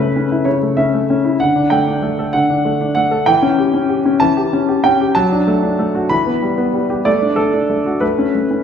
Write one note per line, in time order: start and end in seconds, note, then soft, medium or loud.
0.00 0.44 C#3 soft
0.00 0.48 A3 soft
0.00 0.16 C#4 soft
0.00 0.46 B4 medium
0.00 0.48 E5 medium
0.16 0.41 C#4 soft
0.31 0.56 E4 soft
0.45 1.37 C#3 soft
0.45 0.77 C#5 medium
0.63 0.87 A3 soft
0.77 1.03 C#4 soft
0.77 1.40 E5 medium
0.94 1.19 A3 soft
1.10 1.35 C#4 soft
1.25 1.40 E4 soft
1.40 2.33 D3 soft
1.40 1.71 F#5 medium
1.56 1.81 D4 soft
1.70 1.97 A3 soft
1.70 2.33 G5 medium
1.88 2.12 D4 soft
2.02 2.27 A3 soft
2.19 2.43 A4 soft
2.33 3.25 D3 soft
2.33 2.93 F#5 medium
2.50 2.75 D4 soft
2.65 2.90 A3 soft
2.81 3.06 D4 soft
2.95 3.21 A3 soft
2.95 3.27 F#5 medium
3.11 3.27 A4 soft
3.26 4.20 E3 medium
3.26 4.21 G5 medium
3.42 3.68 C#4 soft
3.58 3.84 G4 soft
3.74 3.99 C#4 soft
3.89 4.15 G4 soft
4.06 4.31 C#4 soft
4.20 5.13 E3 soft
4.20 4.84 A5 medium
4.37 4.62 G4 soft
4.53 4.78 C#4 soft
4.69 4.94 G4 soft
4.84 5.10 C#4 soft
4.84 5.15 G5 medium
5.01 5.16 G4 soft
5.15 6.08 F#3 medium
5.15 6.10 A5 medium
5.32 5.57 D4 soft
5.47 5.73 A3 soft
5.63 5.88 D4 soft
5.79 6.04 A3 soft
5.95 6.11 F#4 soft
6.09 7.03 E3 medium
6.09 6.74 B5 medium
6.26 6.52 B3 soft
6.42 6.68 G3 soft
6.58 6.84 B3 soft
6.74 6.99 G3 soft
6.90 7.06 G4 soft
7.05 7.36 A3 medium
7.05 7.37 D5 medium
7.22 7.47 D4 soft
7.36 7.63 A3 soft
7.36 8.01 A4 medium
7.53 7.79 D4 soft
7.70 7.95 A3 soft
7.86 8.02 F#4 soft
8.00 8.34 A3 soft
8.00 8.63 B4 medium
8.18 8.45 C#4 soft
8.35 8.61 A3 soft
8.51 8.63 C#4 soft